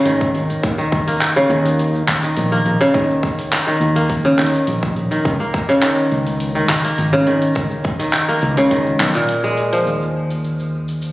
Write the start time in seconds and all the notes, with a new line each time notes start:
Already playing: C#3 A#3
0.05 G#1 D#3, closed hi-hat, cabasa
0.21 kick, cabasa
0.34 G#1, closed hi-hat
0.50 closed hi-hat, cabasa
0.63 D#2, kick, closed hi-hat, cabasa
0.78 D#3, cabasa
0.92 kick, closed hi-hat
1.08 A#3, closed hi-hat, cabasa
1.21 clap, closed hi-hat, cabasa
1.36 C#3, cabasa
1.50 D#2 D#3, closed hi-hat
1.66 closed hi-hat, cabasa
1.79 closed hi-hat, cabasa
1.95 cabasa
2.08 D#2, kick, clap, closed hi-hat
2.16 closed hi-hat
2.23 D#3, closed hi-hat, cabasa
2.37 A#1, closed hi-hat, cabasa
2.52 A#3, cabasa
2.66 A#1, closed hi-hat
2.81 C#3, closed hi-hat, cabasa
2.94 D#2 D#3, kick, closed hi-hat, cabasa
3.10 cabasa
3.23 kick, closed hi-hat
3.39 closed hi-hat, cabasa
3.52 clap, closed hi-hat, cabasa
3.67 D#3, cabasa
3.80 D#2, closed hi-hat
3.96 A#3, closed hi-hat, cabasa
4.10 kick, closed hi-hat, cabasa
4.25 C#3, cabasa
4.38 D#2 D#3, clap, closed hi-hat
4.46 closed hi-hat
4.54 closed hi-hat, cabasa
4.67 A#1, closed hi-hat, cabasa
4.83 kick, cabasa
4.96 A#1, closed hi-hat
5.11 D#3, closed hi-hat, cabasa
5.25 C#2, kick, closed hi-hat, cabasa
5.40 A#3, cabasa
5.54 kick, closed hi-hat
5.69 C#3, closed hi-hat, cabasa
5.82 D#3, clap, closed hi-hat, cabasa
5.98 cabasa
6.12 C#2, closed hi-hat
6.27 closed hi-hat, cabasa
6.40 closed hi-hat, cabasa
6.55 D#3, cabasa
6.69 C#2, kick, clap, closed hi-hat
6.77 closed hi-hat
6.84 A#3, closed hi-hat, cabasa
6.98 G#1, closed hi-hat, cabasa
7.13 C#3, cabasa
7.27 G#1 D#3, closed hi-hat
7.42 closed hi-hat, cabasa
7.55 C#2, kick, closed hi-hat, cabasa
7.71 cabasa
7.84 kick, closed hi-hat
7.99 D#3, closed hi-hat, cabasa
8.13 clap, closed hi-hat, cabasa
8.29 A#3, cabasa
8.42 C#2, closed hi-hat
8.57 C#3, closed hi-hat, cabasa
8.71 D#3, kick, closed hi-hat, cabasa
8.87 cabasa
9.00 B1, clap, closed hi-hat
9.08 closed hi-hat
9.15 A#2, closed hi-hat, cabasa
9.29 closed hi-hat, cabasa
9.44 G#3, cabasa
9.57 closed hi-hat
9.73 F3, closed hi-hat, cabasa
9.86 D#2, cabasa
10.02 cabasa
10.31 cabasa
10.44 cabasa
10.60 cabasa
10.88 cabasa
11.02 cabasa